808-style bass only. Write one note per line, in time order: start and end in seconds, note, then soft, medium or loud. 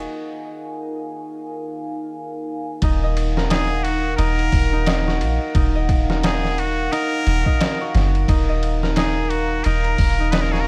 2.82 4.16 D#1 loud
4.19 4.50 D#1 medium
4.53 5.23 D#1 medium
5.21 5.39 A#1 medium
5.55 6.89 D#1 loud
7.27 7.44 D#1 medium
7.95 8.25 F#1 medium
8.29 9.62 D#1 loud
9.66 9.96 D#1 medium
9.99 10.68 D#1 loud